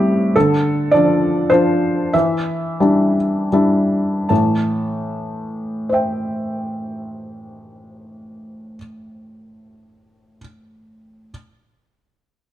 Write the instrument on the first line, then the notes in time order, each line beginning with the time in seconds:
felt piano
Already playing: A2 G3 C4 E4 G4 E5
0.36 D3 A4
0.91 F3 D4 F4 D5
1.50 F3 D4 F4 C5
2.13 E3 E5
2.80 G3 D4 E4
3.52 G3 D4 E4
4.29 A2 E3 A5
5.89 C5 E5
5.94 G5